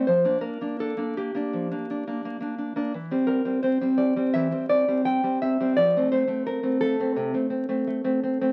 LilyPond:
\new Staff \with { instrumentName = "Nylon-string guitar" } { \time 4/4 \key f \major \tempo 4 = 85 << { c''8 bes'8 a'8 g'2 r8 | r8 bes'8 c''8 d''8 e''8 d''8 g''8 e''8 | d''8 c''8 bes'8 a'2 r8 | } \\ { f16 <bes d'>16 bes16 <bes d'>16 d'16 <bes d'>16 bes16 <bes d'>16 f16 <bes d'>16 d'16 <bes d'>16 bes16 <bes d'>16 d'16 <bes d'>16 | e16 <g c'>16 g16 <g c'>16 c'16 <g c'>16 g16 <g c'>16 e16 <g c'>16 c'16 <g c'>16 g16 <g c'>16 c'16 <g c'>16 | f16 <a c'>16 a16 <a c'>16 c'16 <a c'>16 a16 <a c'>16 c16 <a c'>16 c'16 <a c'>16 a16 <a c'>16 c'16 <a c'>16 | } >> }